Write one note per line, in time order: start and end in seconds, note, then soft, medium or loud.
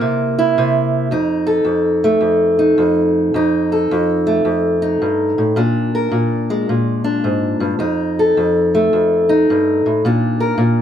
0.00 0.57 C3 medium
0.00 1.11 A#3 medium
0.00 0.37 E4 medium
0.00 1.10 G4 medium
0.39 1.11 E4 medium
0.58 1.11 C3 medium
1.11 1.64 F2 medium
1.11 2.58 D#4 medium
1.47 3.31 A4 medium
1.65 2.20 F2 medium
2.04 3.32 A3 medium
2.21 2.77 F2 medium
2.59 3.32 D#4 medium
2.78 3.33 F2 medium
3.34 3.90 F2 medium
3.34 4.81 D#4 medium
3.72 5.55 A4 medium
3.91 4.44 F2 medium
4.27 5.55 A3 medium
4.45 5.01 F2 medium
4.82 5.55 D#4 soft
5.02 5.37 G2 medium
5.38 5.57 A2 medium
5.56 6.10 A#2 medium
5.56 7.03 D4 medium
5.95 7.78 A#4 medium
6.12 6.68 A#2 medium
6.50 7.81 G#3 medium
6.69 7.80 A#2 medium
7.04 7.77 D4 medium
7.24 7.60 G#2 medium
7.60 7.78 G2 medium
7.79 8.35 F2 medium
7.79 9.27 D#4 medium
8.19 10.02 A4 medium
8.37 8.92 F2 medium
8.75 10.02 A3 medium
8.93 9.48 F2 medium
9.29 10.02 D#4 medium
9.50 9.85 G2 medium
9.86 10.04 A2 medium
10.05 10.57 A#2 medium
10.05 10.82 D4 medium
10.40 10.82 A#4 medium
10.58 10.82 A#2 medium